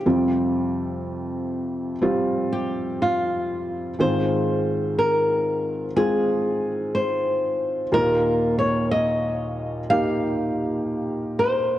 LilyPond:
<<
  \new Staff \with { instrumentName = "Nylon-string guitar" } { \time 4/4 \key aes \major \tempo 4 = 61 g'4 r4. g'8 f'4 | c''4 bes'4 aes'4 c''4 | \tuplet 3/2 { bes'4 des''8 } ees''4 f''4. c''8 | }
  \new Staff \with { instrumentName = "Felt piano" } { \time 4/4 \key aes \major <g c' f'>2 <g c' f'>2 | <aes c' f'>2 <aes c' f'>2 | <bes ees' f'>2 <bes ees' g'>2 | }
  \new Staff \with { instrumentName = "Felt piano" } { \clef bass \time 4/4 \key aes \major <f, c>1 | <aes, ees>1 | <ees, bes,>1 | }
>>